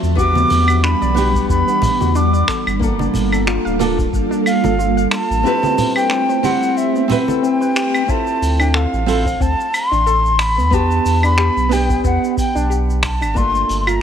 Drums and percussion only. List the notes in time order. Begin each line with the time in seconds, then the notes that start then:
0.03 shaker
0.17 kick, shaker
0.35 high conga, shaker
0.50 open hi-hat, muted conga, shaker
0.68 claves, shaker
0.84 finger snap, shaker
1.02 shaker
1.16 open hi-hat, high conga, shaker
1.35 kick, shaker
1.49 kick, shaker
1.68 shaker
1.82 kick, open hi-hat, muted conga, low conga, shaker
2.01 high conga, shaker
2.15 shaker
2.34 shaker
2.48 finger snap, kick, open hi-hat, shaker
2.67 claves, shaker
2.81 kick, shaker
2.99 high conga, shaker
3.14 open hi-hat, low conga, shaker
3.32 claves, shaker
3.47 finger snap, shaker
3.67 shaker
3.80 open hi-hat, high conga, shaker
3.98 kick, shaker
4.13 kick, shaker
4.32 shaker
4.46 open hi-hat, claves, shaker
4.64 muted conga, high conga, shaker
4.80 shaker
4.98 shaker
5.11 finger snap, open hi-hat, shaker
5.31 shaker
5.46 shaker
5.63 high conga, shaker
5.78 open hi-hat, muted conga, low conga, shaker
5.96 claves, shaker
6.10 finger snap, shaker
6.30 shaker
6.44 open hi-hat, high conga, shaker
6.63 shaker
6.78 shaker
6.96 shaker
7.10 open hi-hat, muted conga, low conga, shaker
7.28 muted conga, high conga, shaker
7.44 shaker
7.62 shaker
7.75 finger snap, open hi-hat, shaker
7.95 claves, shaker
8.09 kick, shaker
8.27 shaker
8.42 open hi-hat, shaker
8.60 claves, shaker
8.74 finger snap, shaker
8.94 shaker
9.08 open hi-hat, shaker
9.26 kick, shaker
9.40 kick, shaker
9.60 shaker
9.74 open hi-hat, claves, shaker
9.93 shaker
10.07 shaker
10.26 shaker
10.39 finger snap, open hi-hat, shaker
10.59 shaker
10.72 kick, shaker
10.91 shaker
11.06 open hi-hat, shaker
11.23 claves, shaker
11.38 finger snap, shaker
11.57 shaker
11.71 open hi-hat, shaker
11.89 kick, shaker
12.04 kick, shaker
12.24 shaker
12.37 kick, open hi-hat, shaker
12.56 shaker
12.72 shaker
12.90 shaker
13.03 finger snap, kick, open hi-hat, shaker
13.22 claves, shaker
13.36 kick, shaker
13.55 shaker
13.69 open hi-hat, shaker
13.87 claves, shaker